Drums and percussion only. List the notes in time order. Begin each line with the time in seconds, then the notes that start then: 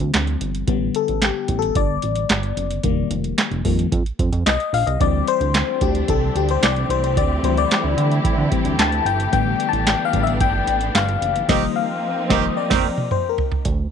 0.00 closed hi-hat
0.14 snare, clap, closed hi-hat
0.27 closed hi-hat
0.41 closed hi-hat
0.55 closed hi-hat
0.68 kick, closed hi-hat
0.95 closed hi-hat
1.08 closed hi-hat
1.22 snare, clap, closed hi-hat
1.48 kick, closed hi-hat
1.62 closed hi-hat
1.75 kick, closed hi-hat
2.02 closed hi-hat
2.15 closed hi-hat
2.29 snare, clap, closed hi-hat
2.43 closed hi-hat
2.57 closed hi-hat
2.71 closed hi-hat
2.83 kick, closed hi-hat
3.11 closed hi-hat
3.24 closed hi-hat
3.38 snare, clap, closed hi-hat
3.52 closed hi-hat
3.65 kick, open hi-hat
3.79 closed hi-hat
3.92 kick, closed hi-hat
4.06 closed hi-hat
4.19 kick, closed hi-hat
4.33 closed hi-hat
4.46 snare, clap, closed hi-hat
4.60 closed hi-hat
4.74 open hi-hat
4.87 closed hi-hat
5.00 kick, closed hi-hat
5.28 closed hi-hat
5.41 closed hi-hat
5.54 snare, clap, closed hi-hat
5.81 kick, closed hi-hat
5.95 closed hi-hat
6.08 kick, closed hi-hat
6.36 closed hi-hat
6.49 closed hi-hat
6.63 snare, clap, closed hi-hat
6.76 closed hi-hat
6.90 closed hi-hat
7.04 closed hi-hat
7.17 kick, closed hi-hat
7.44 closed hi-hat
7.57 closed hi-hat
7.71 snare, clap, closed hi-hat
7.98 closed hi-hat
8.12 closed hi-hat
8.24 kick, closed hi-hat
8.52 kick, closed hi-hat
8.65 closed hi-hat
8.79 snare, clap, closed hi-hat
8.92 closed hi-hat
9.06 closed hi-hat
9.20 closed hi-hat
9.33 kick, closed hi-hat
9.60 closed hi-hat
9.73 closed hi-hat
9.87 snare, clap, closed hi-hat
10.13 kick, closed hi-hat
10.27 closed hi-hat
10.40 kick, closed hi-hat
10.67 closed hi-hat
10.81 closed hi-hat
10.95 snare, clap, closed hi-hat
11.09 closed hi-hat
11.22 closed hi-hat
11.36 closed hi-hat
11.49 kick, snare, crash
12.30 kick, snare
12.70 kick, snare, crash
12.98 mid tom
13.11 mid tom
13.38 floor tom
13.52 floor tom
13.65 kick, closed hi-hat